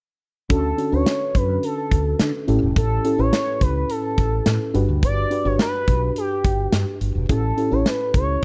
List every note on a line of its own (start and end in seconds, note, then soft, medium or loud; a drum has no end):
0.49 0.71 D2 medium
0.49 1.31 D3 medium
0.49 0.71 C#4 medium
0.49 0.72 D4 medium
0.49 0.72 F#4 medium
0.49 0.72 A4 medium
0.49 0.95 A4 medium
0.49 kick medium
0.49 closed hi-hat medium
0.78 0.89 C#4 medium
0.78 0.89 D4 medium
0.78 0.89 F#4 medium
0.78 0.89 A4 medium
0.78 closed hi-hat medium
0.92 1.03 D2 medium
0.92 1.79 C#4 medium
0.92 1.79 D4 medium
0.92 1.80 F#4 medium
0.92 1.80 B4 medium
0.92 1.37 C#5 loud
1.06 snare loud
1.06 closed hi-hat medium
1.35 1.56 F#2 medium
1.35 1.63 B4 medium
1.35 kick medium
1.35 closed hi-hat medium
1.63 2.44 A4 medium
1.63 closed hi-hat medium
1.91 2.13 D2 medium
1.91 kick medium
1.91 closed hi-hat medium
2.19 2.30 D3 medium
2.19 snare loud
2.19 closed hi-hat medium
2.48 2.59 A1 medium
2.48 3.29 A2 medium
2.48 2.93 C#4 medium
2.48 2.93 E4 medium
2.48 2.94 G4 medium
2.48 2.94 A4 medium
2.48 closed hi-hat medium
2.62 2.73 E1 medium
2.76 2.98 A1 loud
2.76 3.21 A4 medium
2.76 kick medium
2.76 closed hi-hat medium
3.04 3.15 C#4 medium
3.04 3.15 E4 medium
3.04 3.16 G4 medium
3.04 3.16 A4 medium
3.04 closed hi-hat medium
3.18 3.29 A1 medium
3.18 4.05 C#4 medium
3.18 4.06 E4 medium
3.18 4.06 G4 medium
3.18 4.06 B4 medium
3.18 3.63 C#5 loud
3.33 snare medium
3.33 closed hi-hat medium
3.61 3.82 C#2 medium
3.61 3.92 B4 medium
3.61 kick medium
3.61 closed hi-hat medium
3.90 4.75 A4 medium
3.90 closed hi-hat medium
4.18 4.39 A1 medium
4.18 kick medium
4.18 closed hi-hat medium
4.46 4.57 A2 medium
4.46 snare loud
4.46 closed hi-hat medium
4.74 4.85 G1 medium
4.74 5.55 G2 medium
4.74 5.20 D4 medium
4.74 5.20 F#4 medium
4.74 5.20 G4 medium
4.74 5.20 B4 medium
4.74 closed hi-hat medium
4.89 4.99 D2 medium
5.03 5.24 G1 loud
5.03 5.48 D5 loud
5.03 kick loud
5.03 closed hi-hat medium
5.31 5.42 D4 medium
5.31 5.42 F#4 medium
5.31 5.42 G4 medium
5.31 5.42 B4 medium
5.31 closed hi-hat medium
5.45 5.56 G1 loud
5.45 6.32 D4 medium
5.45 6.32 F#4 medium
5.45 6.32 G4 medium
5.45 6.33 B4 medium
5.45 5.60 C#5 loud
5.59 6.13 B4 loud
5.59 snare loud
5.59 closed hi-hat medium
5.88 6.09 B1 medium
5.88 kick medium
5.88 closed hi-hat medium
6.16 6.98 G4 medium
6.16 closed hi-hat medium
6.44 6.66 G1 medium
6.44 kick medium
6.44 closed hi-hat medium
6.72 6.83 G2 medium
6.72 snare loud
6.72 closed hi-hat medium
7.01 7.11 G1 medium
7.01 closed hi-hat medium
7.15 7.26 E1 medium
7.29 7.51 A1 loud
7.29 8.10 A2 medium
7.29 7.51 C#4 medium
7.29 7.51 E4 medium
7.29 7.51 G4 medium
7.29 7.51 A4 medium
7.29 7.74 A4 medium
7.29 kick medium
7.29 closed hi-hat medium
7.57 7.68 C#4 medium
7.57 7.68 E4 medium
7.57 7.69 G4 medium
7.57 7.69 A4 medium
7.57 closed hi-hat medium
7.71 7.82 A1 medium
7.71 8.44 C#4 medium
7.71 8.44 E4 medium
7.71 8.44 G4 medium
7.71 8.44 A4 medium
7.71 7.88 C#5 loud
7.86 8.15 B4 loud
7.86 snare loud
7.86 closed hi-hat medium
8.14 8.35 C#2 medium
8.14 8.44 C#5 loud
8.14 kick medium
8.14 closed hi-hat medium